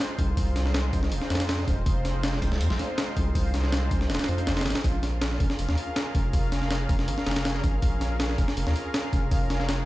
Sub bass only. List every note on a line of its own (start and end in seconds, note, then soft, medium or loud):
0.19 0.92 C2 loud
0.93 1.13 C2 loud
1.12 1.20 D#1 medium
1.30 1.66 F2 medium
1.68 1.84 D#1 medium
1.86 2.41 F1 loud
2.42 2.62 C2 loud
2.61 2.69 F2 loud
2.71 2.78 A#1 medium
3.17 3.90 C2 loud
3.91 4.11 C2 medium
4.10 4.19 D#1 medium
4.29 4.49 F2 medium
4.47 4.67 F1 medium
4.66 4.74 G#1 medium
4.84 5.39 A#1 loud
5.40 5.49 F1 loud
5.59 5.68 F1 medium
5.69 5.77 D#2 medium
6.15 6.88 F1 loud
6.89 7.09 F1 loud
7.08 7.17 G#1 medium
7.26 7.62 F1 medium
7.64 7.81 G#1 medium
7.82 8.37 A#1 loud
8.38 8.47 F1 medium
8.57 8.66 F1 loud
8.66 8.75 D#2 medium
9.13 9.85 F1 loud